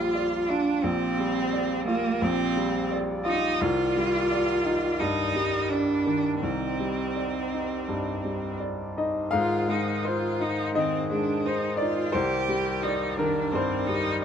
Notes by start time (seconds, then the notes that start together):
Already playing: A#1 G3 F4 G4 D5
0.15 D5
0.49 D4 F4
0.83 A#1 C4 F4 G4 D5
1.19 G3
1.53 D5
1.87 A#3 F4
2.22 A#1 C4
2.56 G3
2.91 D5
3.25 D#4 F4
3.59 C2 D#3 F4 G4 D5
3.96 G3
4.31 D5
4.65 D#4
5.00 G2 D#4
5.35 G3
5.69 D4 D5
6.06 D#3
6.42 C2 C4 D#4 G4 C5
6.79 G3
7.16 D5
7.53 D#4
7.89 G2
8.24 G3
8.60 D5
8.97 D#4 D#5
9.31 G#2 D#3 F4 G#4 C5 F5
9.68 G#3 D#4
10.05 F4 C5
10.40 D#4
10.75 D#3 C4 D#5
11.10 G#3 D4
11.46 D#4 C5
11.77 D#4 F4 D5
12.12 C2 G4 C5 D5
12.48 G3
12.83 D#4 D5
13.17 D#3 D4 A#4
13.52 G2 C4 C5
13.86 G3 D#4